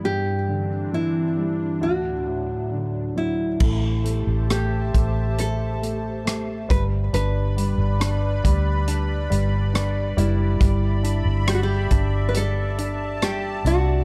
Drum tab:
CC |--------|x-------|--------|--------|
HH |--------|-xxxxxxx|xxxxxxxx|xxxxxxxx|
SD |--------|--r---r-|--r---r-|--r---r-|
BD |--------|o--o---o|---o----|o--o----|